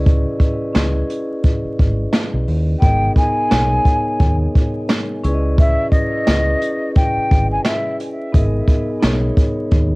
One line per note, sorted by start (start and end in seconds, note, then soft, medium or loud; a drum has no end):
0.00 0.24 C#2 medium
0.00 0.36 C#4 loud
0.00 0.37 E4 medium
0.00 0.37 G#4 medium
0.00 0.38 B4 medium
0.00 0.42 D#5 loud
0.06 kick loud
0.06 closed hi-hat loud
0.40 0.72 C#4 medium
0.40 0.73 E4 medium
0.40 0.74 G#4 medium
0.40 0.74 B4 medium
0.40 0.75 D#5 medium
0.40 kick medium
0.40 closed hi-hat medium
0.73 1.02 C#2 medium
0.73 2.03 C#4 medium
0.73 2.04 E4 medium
0.73 2.04 G#4 medium
0.73 2.05 B4 medium
0.73 2.05 D#5 medium
0.73 snare loud
0.73 snare medium
0.73 closed hi-hat loud
1.10 closed hi-hat medium
1.44 kick loud
1.44 closed hi-hat medium
1.65 muted fingered electric bass stroke soft
1.79 2.05 G#1 loud
1.79 kick medium
1.79 closed hi-hat medium
2.13 snare loud
2.13 snare medium
2.13 closed hi-hat medium
2.34 2.44 B1 medium
2.48 2.74 D#2 medium
2.48 open hi-hat medium
2.80 3.08 G#1 loud
2.80 3.14 B3 medium
2.80 3.14 D#4 medium
2.80 3.14 G#4 medium
2.80 3.15 A#4 medium
2.80 3.12 G5 loud
2.80 kick loud
2.80 closed hi-hat loud
2.84 3.15 D#5 medium
3.16 3.47 B3 medium
3.16 3.47 D#4 medium
3.16 3.48 G#4 medium
3.16 3.49 A#4 medium
3.16 3.51 D#5 medium
3.16 4.37 G#5 medium
3.16 kick medium
3.16 closed hi-hat medium
3.48 3.78 B1 loud
3.48 4.79 B3 medium
3.48 4.79 D#4 medium
3.48 4.80 G#4 medium
3.48 4.80 A#4 medium
3.48 4.81 C#5 medium
3.48 snare loud
3.48 snare medium
3.52 closed hi-hat loud
3.85 kick medium
3.85 closed hi-hat medium
4.20 4.46 D#2 loud
4.20 kick loud
4.20 closed hi-hat medium
4.55 kick loud
4.55 closed hi-hat medium
4.89 snare loud
4.89 snare medium
4.89 closed hi-hat medium
5.23 5.76 C#2 medium
5.23 5.88 C#4 loud
5.23 5.89 E4 medium
5.23 5.89 G#4 medium
5.23 5.90 B4 medium
5.23 closed hi-hat medium
5.27 5.33 D5 medium
5.34 5.93 D#5 loud
5.58 5.90 E5 loud
5.58 kick loud
5.58 closed hi-hat loud
5.91 6.23 C#4 medium
5.91 6.24 E4 medium
5.91 6.25 G#4 medium
5.91 6.26 B4 medium
5.91 6.91 D#5 medium
5.91 kick medium
5.91 closed hi-hat medium
5.95 6.26 D#5 medium
6.25 6.53 C#2 loud
6.25 7.55 C#4 medium
6.25 7.55 E4 medium
6.25 7.56 G#4 medium
6.25 7.56 B4 medium
6.25 7.57 D#5 medium
6.25 snare loud
6.25 snare medium
6.25 closed hi-hat loud
6.61 closed hi-hat medium
6.95 7.47 G5 medium
6.95 kick loud
6.95 closed hi-hat medium
7.17 muted fingered electric bass stroke soft
7.31 7.57 G#1 medium
7.31 kick loud
7.31 closed hi-hat medium
7.52 7.64 G#5 medium
7.65 7.96 E5 medium
7.65 snare loud
7.65 closed hi-hat medium
8.00 closed hi-hat medium
8.32 8.60 G#1 loud
8.32 8.65 B3 medium
8.32 8.66 D#4 medium
8.32 8.66 G#4 medium
8.32 8.67 A#4 medium
8.32 8.67 D#5 medium
8.32 kick loud
8.32 closed hi-hat loud
8.68 8.99 B3 medium
8.68 9.00 D#4 medium
8.68 9.01 G#4 medium
8.68 9.02 A#4 medium
8.68 kick medium
8.68 closed hi-hat medium
8.72 9.03 D#5 medium
9.00 9.29 B1 loud
9.00 9.95 B3 medium
9.00 9.95 D#4 medium
9.00 9.95 G#4 medium
9.00 9.95 A#4 medium
9.00 9.95 C#5 medium
9.00 snare loud
9.00 snare medium
9.00 closed hi-hat loud
9.37 kick medium
9.37 closed hi-hat medium
9.71 9.95 D#2 loud
9.71 kick loud
9.71 closed hi-hat medium